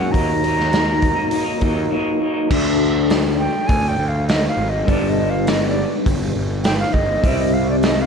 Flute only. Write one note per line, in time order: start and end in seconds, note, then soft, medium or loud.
0.00 0.13 F#5 medium
0.11 1.90 A#5 loud
3.38 3.69 G5 medium
3.67 3.90 G#5 loud
3.88 4.10 G5 medium
4.08 4.28 F5 medium
4.28 4.46 D#5 medium
4.48 4.71 F5 medium
4.69 4.90 D#5 medium
4.89 5.11 D5 medium
5.09 5.31 D#5 medium
5.30 5.51 F5 medium
5.49 5.67 D#5 medium
5.69 5.95 D5 medium
6.64 6.78 G5 loud
6.79 6.95 F5 loud
6.93 7.38 D#5 medium
7.38 7.55 D#5 medium
7.53 7.68 F5 medium
7.70 7.76 D5 medium
7.85 8.02 D#5 medium
8.01 8.06 F5 medium